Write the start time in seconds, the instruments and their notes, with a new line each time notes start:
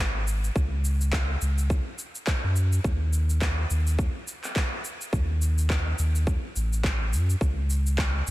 Already playing: sub bass G#1
0.28 shaker
0.44 shaker
0.56 sub bass C#2, kick, shaker
0.85 shaker
1.01 shaker
1.13 kick, clap, shaker
1.42 sub bass C#2, shaker
1.58 shaker
1.70 kick, shaker
1.99 shaker
2.15 shaker
2.27 kick, clap, shaker
2.44 sub bass F#2
2.56 shaker
2.73 shaker
2.84 sub bass D#2, kick, shaker
3.13 shaker
3.30 shaker
3.42 kick, clap, shaker
3.71 sub bass D#2, shaker
3.87 shaker
3.99 kick, shaker
4.28 shaker
4.44 clap, shaker
4.56 kick, clap, shaker
4.85 shaker
5.01 shaker
5.13 sub bass D#2, kick, shaker
5.42 shaker
5.58 shaker
5.70 kick, clap, shaker
5.99 sub bass D#2, shaker
6.15 shaker
6.27 kick, shaker
6.56 sub bass A1, shaker
6.73 shaker
6.84 kick, clap, shaker
7.13 sub bass F#2, shaker
7.30 shaker
7.41 sub bass C#2, kick, shaker
7.70 shaker
7.87 shaker
7.98 kick, clap, shaker
8.27 shaker